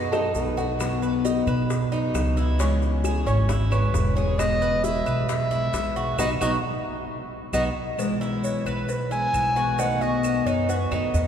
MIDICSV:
0, 0, Header, 1, 8, 480
1, 0, Start_track
1, 0, Key_signature, 4, "major"
1, 0, Tempo, 449775
1, 852, Time_signature, 4, 2, 24, 8
1, 12031, End_track
2, 0, Start_track
2, 0, Title_t, "Clarinet"
2, 0, Program_c, 0, 71
2, 0, Note_on_c, 0, 75, 127
2, 571, Note_off_c, 0, 75, 0
2, 3971, Note_on_c, 0, 71, 93
2, 4414, Note_off_c, 0, 71, 0
2, 4441, Note_on_c, 0, 73, 111
2, 4683, Note_on_c, 0, 75, 127
2, 4699, Note_off_c, 0, 73, 0
2, 5160, Note_on_c, 0, 76, 116
2, 5176, Note_off_c, 0, 75, 0
2, 5639, Note_off_c, 0, 76, 0
2, 5645, Note_on_c, 0, 76, 122
2, 6561, Note_off_c, 0, 76, 0
2, 6608, Note_on_c, 0, 75, 106
2, 6722, Note_off_c, 0, 75, 0
2, 6853, Note_on_c, 0, 75, 87
2, 6965, Note_off_c, 0, 75, 0
2, 8043, Note_on_c, 0, 75, 101
2, 8159, Note_off_c, 0, 75, 0
2, 9007, Note_on_c, 0, 73, 101
2, 9246, Note_on_c, 0, 71, 100
2, 9262, Note_off_c, 0, 73, 0
2, 9726, Note_off_c, 0, 71, 0
2, 9734, Note_on_c, 0, 80, 124
2, 10457, Note_on_c, 0, 78, 113
2, 10473, Note_off_c, 0, 80, 0
2, 10695, Note_on_c, 0, 75, 101
2, 10711, Note_off_c, 0, 78, 0
2, 11172, Note_on_c, 0, 73, 88
2, 11188, Note_off_c, 0, 75, 0
2, 11411, Note_off_c, 0, 73, 0
2, 11416, Note_on_c, 0, 71, 83
2, 12031, Note_off_c, 0, 71, 0
2, 12031, End_track
3, 0, Start_track
3, 0, Title_t, "Nylon-string guitar"
3, 0, Program_c, 1, 24
3, 0, Note_on_c, 1, 71, 96
3, 114, Note_off_c, 1, 71, 0
3, 126, Note_on_c, 1, 69, 93
3, 367, Note_off_c, 1, 69, 0
3, 371, Note_on_c, 1, 71, 83
3, 1287, Note_off_c, 1, 71, 0
3, 11888, Note_on_c, 1, 75, 100
3, 12031, Note_off_c, 1, 75, 0
3, 12031, End_track
4, 0, Start_track
4, 0, Title_t, "Cuban tres"
4, 0, Program_c, 2, 25
4, 0, Note_on_c, 2, 66, 65
4, 126, Note_off_c, 2, 66, 0
4, 134, Note_on_c, 2, 63, 77
4, 598, Note_off_c, 2, 63, 0
4, 611, Note_on_c, 2, 66, 73
4, 1076, Note_off_c, 2, 66, 0
4, 1092, Note_on_c, 2, 71, 67
4, 1323, Note_off_c, 2, 71, 0
4, 1331, Note_on_c, 2, 63, 75
4, 1563, Note_off_c, 2, 63, 0
4, 1570, Note_on_c, 2, 71, 81
4, 2035, Note_off_c, 2, 71, 0
4, 2048, Note_on_c, 2, 63, 79
4, 2513, Note_off_c, 2, 63, 0
4, 2529, Note_on_c, 2, 64, 76
4, 2761, Note_off_c, 2, 64, 0
4, 2770, Note_on_c, 2, 61, 80
4, 3234, Note_off_c, 2, 61, 0
4, 3248, Note_on_c, 2, 68, 68
4, 3479, Note_off_c, 2, 68, 0
4, 3486, Note_on_c, 2, 61, 88
4, 3718, Note_off_c, 2, 61, 0
4, 3726, Note_on_c, 2, 64, 75
4, 3958, Note_off_c, 2, 64, 0
4, 3966, Note_on_c, 2, 61, 76
4, 4430, Note_off_c, 2, 61, 0
4, 4445, Note_on_c, 2, 68, 82
4, 4910, Note_off_c, 2, 68, 0
4, 4927, Note_on_c, 2, 71, 76
4, 5158, Note_off_c, 2, 71, 0
4, 5167, Note_on_c, 2, 64, 78
4, 5398, Note_off_c, 2, 64, 0
4, 5402, Note_on_c, 2, 71, 81
4, 5868, Note_off_c, 2, 71, 0
4, 5880, Note_on_c, 2, 64, 83
4, 6347, Note_off_c, 2, 64, 0
4, 6362, Note_on_c, 2, 66, 87
4, 6590, Note_off_c, 2, 66, 0
4, 6601, Note_on_c, 2, 59, 91
4, 6604, Note_on_c, 2, 63, 90
4, 6608, Note_on_c, 2, 66, 78
4, 6756, Note_off_c, 2, 63, 0
4, 6756, Note_off_c, 2, 66, 0
4, 6757, Note_off_c, 2, 59, 0
4, 6842, Note_on_c, 2, 66, 96
4, 6847, Note_on_c, 2, 63, 93
4, 6850, Note_on_c, 2, 59, 80
4, 6997, Note_off_c, 2, 59, 0
4, 6997, Note_off_c, 2, 66, 0
4, 6998, Note_off_c, 2, 63, 0
4, 8039, Note_on_c, 2, 59, 83
4, 8046, Note_on_c, 2, 63, 90
4, 8049, Note_on_c, 2, 66, 73
4, 8197, Note_off_c, 2, 59, 0
4, 8197, Note_off_c, 2, 63, 0
4, 8197, Note_off_c, 2, 66, 0
4, 8762, Note_on_c, 2, 64, 84
4, 9229, Note_off_c, 2, 64, 0
4, 9243, Note_on_c, 2, 71, 78
4, 9710, Note_off_c, 2, 71, 0
4, 9722, Note_on_c, 2, 64, 77
4, 10190, Note_off_c, 2, 64, 0
4, 10204, Note_on_c, 2, 66, 78
4, 10438, Note_off_c, 2, 66, 0
4, 10443, Note_on_c, 2, 63, 87
4, 10678, Note_off_c, 2, 63, 0
4, 10685, Note_on_c, 2, 66, 66
4, 11153, Note_off_c, 2, 66, 0
4, 11169, Note_on_c, 2, 63, 85
4, 11402, Note_off_c, 2, 63, 0
4, 11412, Note_on_c, 2, 66, 67
4, 11644, Note_off_c, 2, 66, 0
4, 11649, Note_on_c, 2, 63, 85
4, 12031, Note_off_c, 2, 63, 0
4, 12031, End_track
5, 0, Start_track
5, 0, Title_t, "Steel-string acoustic guitar"
5, 0, Program_c, 3, 25
5, 134, Note_on_c, 3, 66, 76
5, 144, Note_on_c, 3, 63, 61
5, 150, Note_on_c, 3, 59, 67
5, 156, Note_on_c, 3, 54, 55
5, 358, Note_off_c, 3, 54, 0
5, 363, Note_off_c, 3, 66, 0
5, 368, Note_off_c, 3, 63, 0
5, 371, Note_off_c, 3, 59, 0
5, 371, Note_on_c, 3, 54, 44
5, 385, Note_on_c, 3, 59, 48
5, 388, Note_on_c, 3, 63, 48
5, 395, Note_on_c, 3, 66, 47
5, 602, Note_off_c, 3, 54, 0
5, 602, Note_off_c, 3, 66, 0
5, 608, Note_off_c, 3, 59, 0
5, 610, Note_off_c, 3, 63, 0
5, 614, Note_on_c, 3, 66, 68
5, 623, Note_on_c, 3, 63, 68
5, 630, Note_on_c, 3, 59, 55
5, 637, Note_on_c, 3, 54, 55
5, 839, Note_on_c, 3, 47, 79
5, 840, Note_off_c, 3, 54, 0
5, 843, Note_off_c, 3, 66, 0
5, 847, Note_off_c, 3, 63, 0
5, 848, Note_off_c, 3, 59, 0
5, 853, Note_on_c, 3, 54, 75
5, 861, Note_on_c, 3, 59, 81
5, 871, Note_on_c, 3, 63, 75
5, 879, Note_on_c, 3, 66, 71
5, 1793, Note_off_c, 3, 47, 0
5, 1800, Note_off_c, 3, 54, 0
5, 1804, Note_off_c, 3, 59, 0
5, 1809, Note_off_c, 3, 63, 0
5, 1810, Note_off_c, 3, 66, 0
5, 2045, Note_on_c, 3, 66, 70
5, 2050, Note_on_c, 3, 63, 67
5, 2061, Note_on_c, 3, 59, 57
5, 2065, Note_on_c, 3, 54, 63
5, 2271, Note_off_c, 3, 54, 0
5, 2277, Note_off_c, 3, 66, 0
5, 2279, Note_off_c, 3, 63, 0
5, 2280, Note_off_c, 3, 59, 0
5, 2284, Note_on_c, 3, 54, 49
5, 2293, Note_on_c, 3, 59, 50
5, 2301, Note_on_c, 3, 63, 45
5, 2308, Note_on_c, 3, 66, 47
5, 2511, Note_off_c, 3, 66, 0
5, 2516, Note_off_c, 3, 54, 0
5, 2517, Note_off_c, 3, 63, 0
5, 2521, Note_off_c, 3, 59, 0
5, 2523, Note_on_c, 3, 66, 70
5, 2530, Note_on_c, 3, 63, 61
5, 2539, Note_on_c, 3, 59, 55
5, 2543, Note_on_c, 3, 54, 53
5, 2755, Note_off_c, 3, 66, 0
5, 2757, Note_on_c, 3, 49, 75
5, 2759, Note_off_c, 3, 63, 0
5, 2763, Note_off_c, 3, 54, 0
5, 2763, Note_off_c, 3, 59, 0
5, 2767, Note_on_c, 3, 52, 67
5, 2777, Note_on_c, 3, 56, 71
5, 2784, Note_on_c, 3, 61, 86
5, 2792, Note_on_c, 3, 64, 79
5, 3705, Note_off_c, 3, 49, 0
5, 3714, Note_off_c, 3, 61, 0
5, 3719, Note_off_c, 3, 52, 0
5, 3720, Note_off_c, 3, 56, 0
5, 3728, Note_off_c, 3, 64, 0
5, 3954, Note_on_c, 3, 64, 73
5, 3963, Note_on_c, 3, 61, 64
5, 3972, Note_on_c, 3, 56, 61
5, 3979, Note_on_c, 3, 52, 59
5, 4179, Note_off_c, 3, 52, 0
5, 4188, Note_off_c, 3, 56, 0
5, 4190, Note_off_c, 3, 64, 0
5, 4192, Note_on_c, 3, 52, 48
5, 4194, Note_off_c, 3, 61, 0
5, 4201, Note_on_c, 3, 56, 51
5, 4209, Note_on_c, 3, 61, 47
5, 4213, Note_on_c, 3, 64, 48
5, 4421, Note_off_c, 3, 64, 0
5, 4428, Note_off_c, 3, 52, 0
5, 4428, Note_off_c, 3, 61, 0
5, 4433, Note_off_c, 3, 56, 0
5, 4434, Note_on_c, 3, 64, 73
5, 4441, Note_on_c, 3, 61, 64
5, 4449, Note_on_c, 3, 56, 62
5, 4457, Note_on_c, 3, 52, 66
5, 4668, Note_off_c, 3, 52, 0
5, 4669, Note_off_c, 3, 64, 0
5, 4669, Note_on_c, 3, 47, 71
5, 4673, Note_off_c, 3, 61, 0
5, 4677, Note_off_c, 3, 56, 0
5, 4681, Note_on_c, 3, 52, 72
5, 4691, Note_on_c, 3, 56, 73
5, 4699, Note_on_c, 3, 59, 74
5, 4706, Note_on_c, 3, 66, 77
5, 5626, Note_off_c, 3, 47, 0
5, 5632, Note_off_c, 3, 52, 0
5, 5632, Note_off_c, 3, 56, 0
5, 5646, Note_off_c, 3, 59, 0
5, 5648, Note_off_c, 3, 66, 0
5, 5880, Note_on_c, 3, 66, 74
5, 5888, Note_on_c, 3, 59, 64
5, 5894, Note_on_c, 3, 56, 71
5, 5903, Note_on_c, 3, 52, 58
5, 6108, Note_off_c, 3, 52, 0
5, 6112, Note_off_c, 3, 66, 0
5, 6116, Note_off_c, 3, 59, 0
5, 6119, Note_off_c, 3, 56, 0
5, 6121, Note_on_c, 3, 52, 44
5, 6131, Note_on_c, 3, 56, 44
5, 6139, Note_on_c, 3, 59, 47
5, 6145, Note_on_c, 3, 66, 61
5, 6345, Note_off_c, 3, 66, 0
5, 6352, Note_off_c, 3, 52, 0
5, 6353, Note_off_c, 3, 59, 0
5, 6357, Note_off_c, 3, 56, 0
5, 6358, Note_on_c, 3, 66, 58
5, 6366, Note_on_c, 3, 59, 63
5, 6376, Note_on_c, 3, 56, 63
5, 6379, Note_on_c, 3, 52, 55
5, 6590, Note_off_c, 3, 59, 0
5, 6591, Note_off_c, 3, 66, 0
5, 6597, Note_off_c, 3, 52, 0
5, 6600, Note_off_c, 3, 56, 0
5, 6602, Note_on_c, 3, 54, 89
5, 6605, Note_on_c, 3, 59, 86
5, 6612, Note_on_c, 3, 63, 77
5, 6757, Note_off_c, 3, 54, 0
5, 6757, Note_off_c, 3, 59, 0
5, 6758, Note_off_c, 3, 63, 0
5, 6839, Note_on_c, 3, 63, 88
5, 6845, Note_on_c, 3, 54, 80
5, 6845, Note_on_c, 3, 59, 84
5, 6995, Note_off_c, 3, 54, 0
5, 6995, Note_off_c, 3, 63, 0
5, 6997, Note_off_c, 3, 59, 0
5, 8037, Note_on_c, 3, 54, 80
5, 8043, Note_on_c, 3, 59, 90
5, 8046, Note_on_c, 3, 63, 83
5, 8194, Note_off_c, 3, 54, 0
5, 8195, Note_off_c, 3, 63, 0
5, 8196, Note_off_c, 3, 59, 0
5, 8509, Note_on_c, 3, 47, 79
5, 8520, Note_on_c, 3, 52, 70
5, 8529, Note_on_c, 3, 56, 78
5, 8537, Note_on_c, 3, 59, 77
5, 8544, Note_on_c, 3, 64, 85
5, 9468, Note_off_c, 3, 47, 0
5, 9473, Note_off_c, 3, 52, 0
5, 9475, Note_off_c, 3, 56, 0
5, 9483, Note_off_c, 3, 64, 0
5, 9487, Note_off_c, 3, 59, 0
5, 9716, Note_on_c, 3, 64, 72
5, 9728, Note_on_c, 3, 59, 61
5, 9734, Note_on_c, 3, 56, 72
5, 9740, Note_on_c, 3, 52, 67
5, 9946, Note_off_c, 3, 52, 0
5, 9951, Note_off_c, 3, 64, 0
5, 9954, Note_off_c, 3, 56, 0
5, 9957, Note_off_c, 3, 59, 0
5, 9959, Note_on_c, 3, 52, 45
5, 9967, Note_on_c, 3, 56, 41
5, 9974, Note_on_c, 3, 59, 53
5, 9978, Note_on_c, 3, 64, 53
5, 10181, Note_off_c, 3, 64, 0
5, 10188, Note_off_c, 3, 59, 0
5, 10193, Note_off_c, 3, 52, 0
5, 10194, Note_on_c, 3, 64, 69
5, 10197, Note_off_c, 3, 56, 0
5, 10201, Note_on_c, 3, 59, 56
5, 10211, Note_on_c, 3, 56, 58
5, 10218, Note_on_c, 3, 52, 59
5, 10431, Note_off_c, 3, 64, 0
5, 10431, Note_on_c, 3, 47, 80
5, 10435, Note_off_c, 3, 59, 0
5, 10437, Note_off_c, 3, 52, 0
5, 10440, Note_off_c, 3, 56, 0
5, 10441, Note_on_c, 3, 51, 70
5, 10450, Note_on_c, 3, 57, 83
5, 10458, Note_on_c, 3, 59, 79
5, 10469, Note_on_c, 3, 66, 68
5, 11392, Note_off_c, 3, 47, 0
5, 11393, Note_off_c, 3, 51, 0
5, 11397, Note_off_c, 3, 57, 0
5, 11401, Note_off_c, 3, 66, 0
5, 11405, Note_off_c, 3, 59, 0
5, 11642, Note_on_c, 3, 66, 83
5, 11650, Note_on_c, 3, 59, 79
5, 11659, Note_on_c, 3, 57, 70
5, 11665, Note_on_c, 3, 51, 54
5, 11867, Note_off_c, 3, 51, 0
5, 11877, Note_off_c, 3, 66, 0
5, 11878, Note_off_c, 3, 57, 0
5, 11880, Note_on_c, 3, 51, 42
5, 11881, Note_off_c, 3, 59, 0
5, 11891, Note_on_c, 3, 57, 50
5, 11898, Note_on_c, 3, 59, 55
5, 11904, Note_on_c, 3, 66, 55
5, 12031, Note_off_c, 3, 51, 0
5, 12031, Note_off_c, 3, 57, 0
5, 12031, Note_off_c, 3, 59, 0
5, 12031, Note_off_c, 3, 66, 0
5, 12031, End_track
6, 0, Start_track
6, 0, Title_t, "Upright bass"
6, 0, Program_c, 4, 32
6, 0, Note_on_c, 4, 42, 83
6, 326, Note_off_c, 4, 42, 0
6, 367, Note_on_c, 4, 35, 86
6, 1500, Note_off_c, 4, 35, 0
6, 1564, Note_on_c, 4, 47, 95
6, 2243, Note_off_c, 4, 47, 0
6, 2286, Note_on_c, 4, 37, 85
6, 3418, Note_off_c, 4, 37, 0
6, 3480, Note_on_c, 4, 32, 97
6, 4159, Note_off_c, 4, 32, 0
6, 4202, Note_on_c, 4, 28, 99
6, 5335, Note_off_c, 4, 28, 0
6, 5399, Note_on_c, 4, 35, 96
6, 6078, Note_off_c, 4, 35, 0
6, 6118, Note_on_c, 4, 35, 89
6, 6567, Note_off_c, 4, 35, 0
6, 6598, Note_on_c, 4, 35, 93
6, 6779, Note_off_c, 4, 35, 0
6, 6838, Note_on_c, 4, 35, 93
6, 7019, Note_off_c, 4, 35, 0
6, 8033, Note_on_c, 4, 35, 93
6, 8216, Note_off_c, 4, 35, 0
6, 9236, Note_on_c, 4, 35, 86
6, 9919, Note_off_c, 4, 35, 0
6, 9960, Note_on_c, 4, 35, 95
6, 11099, Note_off_c, 4, 35, 0
6, 11162, Note_on_c, 4, 42, 88
6, 11613, Note_off_c, 4, 42, 0
6, 11645, Note_on_c, 4, 42, 75
6, 11871, Note_off_c, 4, 42, 0
6, 11885, Note_on_c, 4, 40, 95
6, 12031, Note_off_c, 4, 40, 0
6, 12031, End_track
7, 0, Start_track
7, 0, Title_t, "Muted steel-string acoustic guitar strokes"
7, 1813, Note_on_c, 9, 29, 60
7, 1920, Note_off_c, 9, 29, 0
7, 3717, Note_on_c, 9, 29, 69
7, 3824, Note_off_c, 9, 29, 0
7, 5640, Note_on_c, 9, 29, 72
7, 5747, Note_off_c, 9, 29, 0
7, 9480, Note_on_c, 9, 29, 68
7, 9587, Note_off_c, 9, 29, 0
7, 11403, Note_on_c, 9, 29, 65
7, 11509, Note_off_c, 9, 29, 0
7, 12031, End_track
8, 0, Start_track
8, 0, Title_t, "Drums"
8, 136, Note_on_c, 9, 60, 86
8, 140, Note_on_c, 9, 70, 29
8, 141, Note_on_c, 9, 75, 70
8, 243, Note_off_c, 9, 60, 0
8, 247, Note_off_c, 9, 70, 0
8, 248, Note_off_c, 9, 75, 0
8, 373, Note_on_c, 9, 70, 69
8, 380, Note_on_c, 9, 60, 56
8, 480, Note_off_c, 9, 70, 0
8, 486, Note_off_c, 9, 60, 0
8, 620, Note_on_c, 9, 70, 30
8, 621, Note_on_c, 9, 61, 72
8, 726, Note_off_c, 9, 70, 0
8, 728, Note_off_c, 9, 61, 0
8, 857, Note_on_c, 9, 70, 84
8, 858, Note_on_c, 9, 75, 67
8, 860, Note_on_c, 9, 60, 67
8, 963, Note_off_c, 9, 70, 0
8, 964, Note_off_c, 9, 75, 0
8, 967, Note_off_c, 9, 60, 0
8, 1095, Note_on_c, 9, 70, 30
8, 1202, Note_off_c, 9, 70, 0
8, 1335, Note_on_c, 9, 60, 52
8, 1335, Note_on_c, 9, 70, 75
8, 1442, Note_off_c, 9, 60, 0
8, 1442, Note_off_c, 9, 70, 0
8, 1570, Note_on_c, 9, 70, 28
8, 1575, Note_on_c, 9, 75, 61
8, 1677, Note_off_c, 9, 70, 0
8, 1682, Note_off_c, 9, 75, 0
8, 1816, Note_on_c, 9, 70, 64
8, 1818, Note_on_c, 9, 60, 67
8, 1923, Note_off_c, 9, 70, 0
8, 1925, Note_off_c, 9, 60, 0
8, 2053, Note_on_c, 9, 70, 31
8, 2160, Note_off_c, 9, 70, 0
8, 2292, Note_on_c, 9, 70, 69
8, 2293, Note_on_c, 9, 75, 65
8, 2295, Note_on_c, 9, 60, 63
8, 2295, Note_on_c, 9, 61, 67
8, 2399, Note_off_c, 9, 70, 0
8, 2400, Note_off_c, 9, 75, 0
8, 2401, Note_off_c, 9, 60, 0
8, 2401, Note_off_c, 9, 61, 0
8, 2530, Note_on_c, 9, 70, 30
8, 2637, Note_off_c, 9, 70, 0
8, 2773, Note_on_c, 9, 70, 74
8, 2774, Note_on_c, 9, 60, 70
8, 2879, Note_off_c, 9, 70, 0
8, 2880, Note_off_c, 9, 60, 0
8, 3011, Note_on_c, 9, 60, 36
8, 3011, Note_on_c, 9, 70, 30
8, 3117, Note_off_c, 9, 60, 0
8, 3117, Note_off_c, 9, 70, 0
8, 3246, Note_on_c, 9, 60, 50
8, 3251, Note_on_c, 9, 70, 70
8, 3254, Note_on_c, 9, 75, 66
8, 3353, Note_off_c, 9, 60, 0
8, 3358, Note_off_c, 9, 70, 0
8, 3361, Note_off_c, 9, 75, 0
8, 3485, Note_on_c, 9, 60, 43
8, 3495, Note_on_c, 9, 70, 31
8, 3592, Note_off_c, 9, 60, 0
8, 3601, Note_off_c, 9, 70, 0
8, 3724, Note_on_c, 9, 60, 64
8, 3731, Note_on_c, 9, 70, 64
8, 3831, Note_off_c, 9, 60, 0
8, 3838, Note_off_c, 9, 70, 0
8, 3966, Note_on_c, 9, 60, 31
8, 3970, Note_on_c, 9, 75, 74
8, 3972, Note_on_c, 9, 70, 28
8, 4072, Note_off_c, 9, 60, 0
8, 4077, Note_off_c, 9, 75, 0
8, 4078, Note_off_c, 9, 70, 0
8, 4205, Note_on_c, 9, 60, 56
8, 4205, Note_on_c, 9, 61, 69
8, 4212, Note_on_c, 9, 70, 66
8, 4312, Note_off_c, 9, 60, 0
8, 4312, Note_off_c, 9, 61, 0
8, 4319, Note_off_c, 9, 70, 0
8, 4451, Note_on_c, 9, 70, 30
8, 4558, Note_off_c, 9, 70, 0
8, 4687, Note_on_c, 9, 60, 68
8, 4690, Note_on_c, 9, 70, 79
8, 4690, Note_on_c, 9, 75, 68
8, 4793, Note_off_c, 9, 60, 0
8, 4796, Note_off_c, 9, 75, 0
8, 4797, Note_off_c, 9, 70, 0
8, 4929, Note_on_c, 9, 70, 28
8, 5036, Note_off_c, 9, 70, 0
8, 5163, Note_on_c, 9, 60, 55
8, 5166, Note_on_c, 9, 70, 72
8, 5270, Note_off_c, 9, 60, 0
8, 5273, Note_off_c, 9, 70, 0
8, 5409, Note_on_c, 9, 70, 30
8, 5409, Note_on_c, 9, 75, 66
8, 5515, Note_off_c, 9, 70, 0
8, 5516, Note_off_c, 9, 75, 0
8, 5646, Note_on_c, 9, 70, 60
8, 5648, Note_on_c, 9, 60, 72
8, 5752, Note_off_c, 9, 70, 0
8, 5754, Note_off_c, 9, 60, 0
8, 5887, Note_on_c, 9, 70, 30
8, 5993, Note_off_c, 9, 70, 0
8, 6124, Note_on_c, 9, 60, 54
8, 6124, Note_on_c, 9, 61, 73
8, 6124, Note_on_c, 9, 70, 75
8, 6127, Note_on_c, 9, 75, 61
8, 6231, Note_off_c, 9, 60, 0
8, 6231, Note_off_c, 9, 61, 0
8, 6231, Note_off_c, 9, 70, 0
8, 6234, Note_off_c, 9, 75, 0
8, 6364, Note_on_c, 9, 70, 28
8, 6471, Note_off_c, 9, 70, 0
8, 6602, Note_on_c, 9, 75, 92
8, 6605, Note_on_c, 9, 70, 108
8, 6606, Note_on_c, 9, 60, 111
8, 6709, Note_off_c, 9, 75, 0
8, 6712, Note_off_c, 9, 70, 0
8, 6713, Note_off_c, 9, 60, 0
8, 6840, Note_on_c, 9, 75, 81
8, 6844, Note_on_c, 9, 60, 94
8, 6846, Note_on_c, 9, 70, 94
8, 6946, Note_off_c, 9, 75, 0
8, 6950, Note_off_c, 9, 60, 0
8, 6953, Note_off_c, 9, 70, 0
8, 8041, Note_on_c, 9, 75, 93
8, 8042, Note_on_c, 9, 70, 95
8, 8043, Note_on_c, 9, 60, 76
8, 8147, Note_off_c, 9, 75, 0
8, 8149, Note_off_c, 9, 70, 0
8, 8150, Note_off_c, 9, 60, 0
8, 8523, Note_on_c, 9, 75, 59
8, 8528, Note_on_c, 9, 56, 102
8, 8529, Note_on_c, 9, 70, 76
8, 8630, Note_off_c, 9, 75, 0
8, 8635, Note_off_c, 9, 56, 0
8, 8636, Note_off_c, 9, 70, 0
8, 8772, Note_on_c, 9, 70, 29
8, 8879, Note_off_c, 9, 70, 0
8, 9008, Note_on_c, 9, 70, 73
8, 9009, Note_on_c, 9, 56, 66
8, 9114, Note_off_c, 9, 70, 0
8, 9116, Note_off_c, 9, 56, 0
8, 9248, Note_on_c, 9, 70, 30
8, 9248, Note_on_c, 9, 75, 70
8, 9250, Note_on_c, 9, 56, 71
8, 9354, Note_off_c, 9, 70, 0
8, 9355, Note_off_c, 9, 75, 0
8, 9356, Note_off_c, 9, 56, 0
8, 9485, Note_on_c, 9, 56, 92
8, 9485, Note_on_c, 9, 70, 66
8, 9592, Note_off_c, 9, 56, 0
8, 9592, Note_off_c, 9, 70, 0
8, 9728, Note_on_c, 9, 70, 30
8, 9835, Note_off_c, 9, 70, 0
8, 9969, Note_on_c, 9, 56, 56
8, 9969, Note_on_c, 9, 70, 70
8, 9972, Note_on_c, 9, 75, 64
8, 10075, Note_off_c, 9, 70, 0
8, 10076, Note_off_c, 9, 56, 0
8, 10079, Note_off_c, 9, 75, 0
8, 10209, Note_on_c, 9, 56, 69
8, 10210, Note_on_c, 9, 70, 29
8, 10316, Note_off_c, 9, 56, 0
8, 10316, Note_off_c, 9, 70, 0
8, 10447, Note_on_c, 9, 56, 112
8, 10448, Note_on_c, 9, 70, 85
8, 10554, Note_off_c, 9, 56, 0
8, 10554, Note_off_c, 9, 70, 0
8, 10690, Note_on_c, 9, 70, 33
8, 10797, Note_off_c, 9, 70, 0
8, 10928, Note_on_c, 9, 70, 68
8, 10930, Note_on_c, 9, 56, 61
8, 10931, Note_on_c, 9, 75, 67
8, 11035, Note_off_c, 9, 70, 0
8, 11036, Note_off_c, 9, 56, 0
8, 11038, Note_off_c, 9, 75, 0
8, 11170, Note_on_c, 9, 56, 75
8, 11174, Note_on_c, 9, 70, 28
8, 11277, Note_off_c, 9, 56, 0
8, 11281, Note_off_c, 9, 70, 0
8, 11409, Note_on_c, 9, 56, 97
8, 11411, Note_on_c, 9, 70, 67
8, 11516, Note_off_c, 9, 56, 0
8, 11517, Note_off_c, 9, 70, 0
8, 11651, Note_on_c, 9, 75, 70
8, 11656, Note_on_c, 9, 70, 32
8, 11758, Note_off_c, 9, 75, 0
8, 11763, Note_off_c, 9, 70, 0
8, 11893, Note_on_c, 9, 56, 59
8, 11893, Note_on_c, 9, 70, 72
8, 11999, Note_off_c, 9, 56, 0
8, 12000, Note_off_c, 9, 70, 0
8, 12031, End_track
0, 0, End_of_file